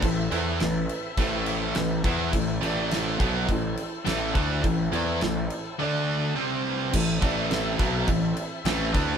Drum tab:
CC |xxxxxxxx|xxxxxxxx|xxxx----|xxxxxxxx|
SD |--o---o-|--o---o-|--o-----|--o---o-|
BD |o---o--o|o--oo--o|o-------|oo-oo--o|